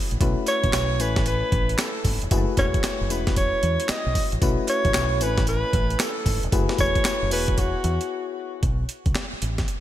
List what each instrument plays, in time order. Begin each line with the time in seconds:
Already playing: synth keys G#3 C#4 E4 F#4 B4
0.11 fingered electric bass A1, closed hi-hat
0.21 fingered electric bass B1, synth keys A3 C#4 E4 F#4 B4, kick, closed hi-hat, tambourine
0.47 alto saxophone C#5, clap, closed hi-hat, tambourine
0.64 fingered electric bass A1, kick, closed hi-hat
0.73 fingered electric bass B1, snare, clap, closed hi-hat, tambourine
0.99 fingered electric bass A1, synth keys A3 C#4 E4 B4 G#5, alto saxophone B4, closed hi-hat, tambourine
1.16 kick, snare, closed hi-hat
1.26 alto saxophone B4, closed hi-hat, tambourine
1.52 fingered electric bass A1, kick, closed hi-hat
1.69 closed hi-hat
1.78 alto saxophone A4, snare, clap, closed hi-hat, tambourine
2.05 fingered electric bass G#1, kick, open hi-hat, tambourine
2.22 fingered electric bass E1, closed hi-hat
2.31 fingered electric bass F#1, synth keys G#3 E4 F#4 G#4 B4, kick, closed hi-hat, tambourine
2.37 synth keys A3
2.57 fingered electric bass E1, alto saxophone C#5, kick, clap, closed hi-hat, tambourine
2.74 kick, closed hi-hat
2.84 muted fingered electric bass stroke, snare, clap, closed hi-hat, tambourine
3.01 fingered electric bass F#1
3.09 fingered electric bass E1, synth keys G#3 C#4 E4 F#4 B4, alto saxophone B4, closed hi-hat, tambourine
3.27 kick, snare, closed hi-hat
3.36 alto saxophone C#5, kick, closed hi-hat, tambourine
3.63 fingered electric bass E2, closed hi-hat
3.80 closed hi-hat
3.89 alto saxophone D#5, muted fingered electric bass stroke, snare, clap, closed hi-hat, tambourine
4.06 fingered electric bass B1
4.15 kick, open hi-hat, tambourine
4.32 fingered electric bass A1, closed hi-hat
4.42 fingered electric bass B1, synth keys A3 C#4 E4 F#4 B4, kick, closed hi-hat, tambourine
4.68 alto saxophone C#5, clap, closed hi-hat, tambourine
4.85 fingered electric bass A1, kick, closed hi-hat
4.94 fingered electric bass B1, snare, clap, closed hi-hat, tambourine
5.20 fingered electric bass A1, synth keys A3 C4 E4 B4 G#5, alto saxophone B4, closed hi-hat, tambourine
5.27 synth keys C#4
5.38 kick, snare, closed hi-hat
5.47 alto saxophone B4, closed hi-hat, tambourine
5.73 fingered electric bass A1, kick, closed hi-hat
5.90 closed hi-hat
6.00 alto saxophone A4, snare, clap, closed hi-hat, tambourine
6.26 fingered electric bass G#1, kick, open hi-hat, tambourine
6.43 fingered electric bass E1, closed hi-hat
6.52 fingered electric bass F#1, synth keys A3 E4 F#4 G#4 B4, kick, closed hi-hat, tambourine
6.69 snare
6.78 fingered electric bass E1, alto saxophone C#5, kick, closed hi-hat, tambourine
6.95 kick, closed hi-hat
7.05 muted fingered electric bass stroke, snare, clap, closed hi-hat, tambourine
7.23 fingered electric bass F#1
7.30 fingered electric bass E1, synth keys B3 E4 F#4 G#4 C#5, alto saxophone B4, open hi-hat, tambourine
7.48 kick
7.58 alto saxophone F#4, kick, closed hi-hat, tambourine
7.84 fingered electric bass E2, closed hi-hat
8.01 closed hi-hat
8.63 fingered electric bass B1, kick, closed hi-hat
8.89 closed hi-hat
9.06 fingered electric bass C#2, kick, closed hi-hat
9.15 snare, clap, closed hi-hat
9.33 muted fingered electric bass stroke
9.42 fingered electric bass A1, closed hi-hat
9.58 kick, snare, closed hi-hat
9.68 closed hi-hat